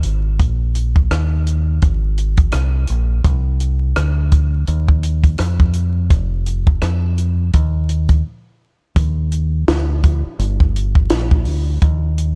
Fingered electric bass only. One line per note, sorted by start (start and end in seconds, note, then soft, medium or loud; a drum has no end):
0.04 0.38 G#1 medium
0.40 1.07 A#1 medium
1.11 1.79 D#2 medium
1.83 2.50 G#1 medium
2.53 2.87 C2 medium
2.90 3.23 A#1 medium
3.25 3.93 C2 medium
3.96 4.64 D2 medium
4.68 5.36 D#2 medium
5.39 6.12 F2 medium
6.10 6.78 F1 medium
6.82 7.50 F2 medium
7.54 8.22 D#2 loud
8.96 9.64 D#2 loud
9.68 10.21 D2 medium
10.24 muted fingered electric bass stroke soft
10.39 11.07 G1 loud
11.10 11.44 A#1 loud
11.46 11.80 D2 medium
11.82 12.35 D#2 medium